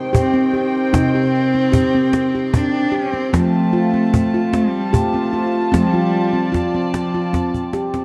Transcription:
Already playing: D#3 C4 C5 G5
0.13 C4 G4, cajon bass
0.34 C4
0.54 C4 G4, cajon slap
0.93 C3 D#4, cajon bass, cajon slap
1.15 G4
1.54 C4
1.72 G4, cajon bass
1.95 C4
2.13 cajon slap
2.35 G4, cajon slap
2.53 C4 D4, cajon bass
2.92 C4 G4, cajon slap
3.13 C4
3.33 F3 A3 C4 F4 A5, cajon bass, cajon slap
3.73 F4
3.94 C4
4.14 cajon bass
4.34 F4
4.53 G3 C4, cajon slap
4.75 cajon slap
4.93 A3 G4, cajon bass
5.14 C4
5.33 F4, cajon slap
5.72 F3 G3 C4 D5, cajon bass, cajon slap
5.94 F4
6.33 C4, cajon slap
6.52 F3 F4, cajon bass, cajon slap
6.75 C4
6.94 cajon slap
7.14 F4
7.33 C4, cajon bass, cajon slap
7.54 cajon bass
7.73 G4, cajon slap
7.94 C4, cajon slap

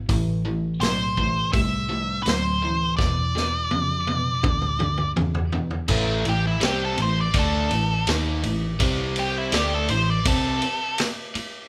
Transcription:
0.09 A1 A2 E3, kick, open hi-hat
0.45 A2 E3
0.81 B1 A2 F#3 C5, snare, open hi-hat
1.17 A2 E3, kick
1.53 C2 A2 G3 E5, kick, open hi-hat
1.89 A2 G3
2.23 D2 A2 F#3 C5, open hi-hat
2.27 snare
2.62 A2 E3
2.97 E2 B2 D5, kick, snare
3.35 E2 B2, snare
3.71 E2 F2 C#3, high tom
4.07 E2 B2, high tom
4.43 D2 E2 D3, kick, mid tom
4.61 mid tom
4.80 E2 D3, mid tom
4.97 mid tom
5.16 E2 C#3, mid tom
5.35 floor tom
5.52 E2 B2, floor tom
5.71 floor tom
5.88 A1 A2 E3 A3, kick, crash
6.25 A1 A2 E3 G4, ride
6.47 E4
6.61 C2 C3 G3 C4, snare, ride
6.65 G4
6.85 A4
6.98 A1 A2 E3, ride
7.02 C5
7.21 D5
7.34 D2 D3 A3 D4, kick, ride
7.39 A4
7.71 A1 A2 E3, ride
8.07 D#2 D#3 A#3 D#4, snare, ride
8.43 A1 A2 E3, ride
8.79 C2 C3 G3 C4, kick, ride
9.16 G4, ride
9.38 E4
9.52 D2 D3 A3 D4 G4, snare, ride
9.74 A4
9.88 A1 A2 E3 C5, ride
10.10 D5
10.25 C2 C3 G3 C4 A4, kick, ride
10.62 ride
10.98 snare, ride
11.35 muted picked electric bass stroke, muted overdriven electric guitar stroke, ride

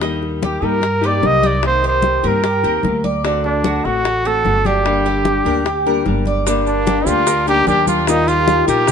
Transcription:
Already playing: D#2
0.01 D#3 G3 A#3 D#4 G4, high bongo, high conga
0.22 high bongo, high conga
0.42 G4, high bongo, high conga
0.62 G2 G3 A#3 D#4 G4 A#4, high bongo, high conga
0.81 A#4, muted nylon-string guitar stroke, high bongo, high conga
1.01 G3 A#3 D#4 G4, high conga
1.06 D5
1.22 C2 G3 A#3 D#4 G4, high bongo, low bongo, high conga
1.26 D#5
1.43 D#4 D5, high bongo, high conga
1.63 C3 D#3 A#3 C4 G4 C5, high bongo, high conga
1.83 G4, high bongo, high conga
1.88 C5
2.02 high bongo, high conga
2.23 G2 D#3 A#3 C4 G4 A#4, high bongo, high conga
2.28 A#4
2.43 G4, muted nylon-string guitar stroke, high bongo, high conga
2.63 D#2 D#3 A#3 C4 G4 A#4, high conga
2.83 D2 A#3 C4 G4, high bongo, low bongo, high conga
3.04 D5, high bongo, high conga
3.24 D3 A3 C4 D4 F#4, high bongo, high conga
3.44 D4, high bongo, high conga
3.64 F#4, high bongo, high conga
3.85 A1 A3 C4 F#4, high bongo, high conga
4.05 A4, muted nylon-string guitar stroke, high bongo, high conga
4.25 A3 C4 F#4 A4, high conga
4.45 G1 D3 A3 C4 F#4, high bongo, low bongo, high conga
4.65 D4 G4, high bongo, high conga
4.85 D3 G3 A#3 D4 G4, high bongo, high conga
5.05 G4, high bongo, high conga
5.25 high bongo, high conga
5.45 D2 G3 A#3 D4 G4 A#4, high bongo, high conga
5.65 G4, muted nylon-string guitar stroke, high bongo, high conga
5.86 G3 A#3 D4 G4 A#4, high conga
6.06 G1 G3 A#3 D4 G4, high bongo, low bongo, high conga
6.26 D5, high bongo, high conga
6.46 D3 G3 A#3 D4 G4, high bongo, high conga, maracas
6.66 A#3 D4, high bongo, high conga, maracas
6.87 G4, high bongo, high conga, maracas
7.06 D2 G3 A#3 D4 F4 G4, high bongo, high conga, maracas
7.26 A#4, muted nylon-string guitar stroke, high bongo, high conga, maracas
7.47 G3 A#3 D4 D#4 G4, high conga, maracas
7.66 D#2 G3 A#3 D4 G4, high bongo, low bongo, high conga, maracas
7.87 D4 F4, high bongo, high conga, maracas
8.07 D#3 G3 A#3 D#4 F4, high bongo, high conga, maracas
8.27 A#3 F4 G4, high bongo, high conga, maracas
8.47 high bongo, high conga, maracas
8.67 A#1 G3 D#4 F4 G4 A#4, high bongo, high conga, maracas
8.87 G4, muted nylon-string guitar stroke, high bongo, maracas

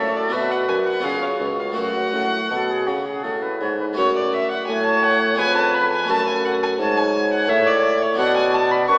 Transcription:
Already playing: A2 A3 C#4 F#4 A4 C#5
0.00 A2
0.17 D5
0.28 B3 D4 F#4
0.32 B2 B4 E5
0.51 F#5
0.68 F#2 G#5
0.87 F#5
0.99 B3 C#4 F4 G#4
1.04 C#3 F5
1.22 C#5
1.40 C#2
1.59 F5
1.72 A3 C#4 F#4
1.76 F#2 F#4 F#5
2.13 A2
2.51 B2 A4
2.70 G#4
2.87 C#3 F#4
3.06 G#4
3.23 A2 A4
3.42 B4
3.60 G#2 C#5
3.79 B4
3.93 A3 C#4 F#4
3.97 F#2 C#5
4.16 D5
4.33 E5
4.51 F#5
4.68 A2 C#5 G#5
4.86 A5
5.03 F#5
5.34 B3 C#4 G#4
5.39 F2 B4 G#5
5.56 A5
5.74 B5
5.93 G#5
6.05 A3 C#4 F#4
6.09 F#2 A4 A5
6.28 G#5
6.45 F#5
6.63 G#5
6.79 G#2 C#5 A5
6.97 G#5
7.33 F#5
7.49 A2 E5
7.67 D5
8.02 C#5
8.14 B3 D4 F#4
8.18 B2 D5 F#5
8.37 G#5
8.54 A5
8.71 B5
8.88 F#2 B4 C#6

